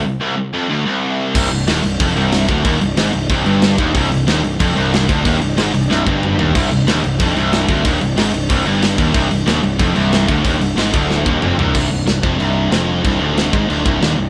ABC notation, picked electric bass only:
X:1
M:4/4
L:1/8
Q:1/4=185
K:Cm
V:1 name="Picked electric bass" clef=bass
z8 | C,,, C,,, E,,, C,,, F,,, C,,,2 D,,, | E,,, C,,, A,,, C,,, C,,, G,,,2 E,,, | C,,, C,,, E,,, C,,, F,,, C,,,2 D,,, |
E,,, C,,, A,,, C,,, C,,, G,,,2 E,,, | C,,, C,,, E,,, C,,, F,,, C,,,2 D,,, | E,,, C,,, A,,, C,,, C,,, G,,,2 E,,, | C,,, C,,, E,,, C,,, F,,, C,,,2 D,,, |
E,,, C,,, A,,, D,,,2 E,,, F,,, C,,, | C,,, C,,, C,,, F,,, C,,,2 F,,,2 | C,,, D,,,2 A,,, D,,, C,,, E,,, C,,, |]